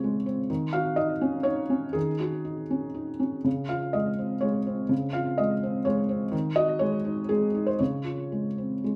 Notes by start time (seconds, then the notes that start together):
Already playing: C#3 G#3 C4 F4 G#4 C#5
0.04 G#3
0.26 C4
0.50 D#3
0.73 F#4 F5
0.96 D#4 D#5
1.21 C#4
1.43 D#4 C#5
1.70 C#4
1.93 D#3 G#4
2.20 F#4
2.45 D#4
2.70 C#4
2.94 D#4
3.20 C#4
3.44 C#3
3.69 F4 F5
3.93 G#3 D#5
4.19 C4
4.41 G#3 C#5
4.67 C4
4.89 C#3
5.13 F4 F5
5.38 G#3 D#5
5.63 C4
5.85 G#3 C#5
6.09 C4
6.32 D#3
6.56 F#4 D#5
6.79 G#3 C#5
7.05 D#4
7.29 G#3 G#4
7.54 D#4
7.67 C5
7.79 C#3 C#5
8.04 F4
8.32 G#3
8.58 C4
8.84 G#3